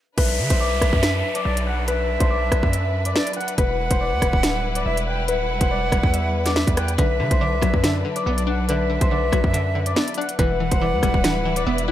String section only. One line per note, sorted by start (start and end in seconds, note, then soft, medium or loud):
0.18 3.55 F#3 medium
0.18 3.55 D4 medium
0.18 10.35 B4 medium
3.58 6.95 G3 medium
3.58 6.95 E4 medium
6.99 10.36 F#3 medium
6.99 10.36 D4 medium
10.39 11.92 G3 medium
10.39 11.92 E4 medium
10.39 11.92 B4 medium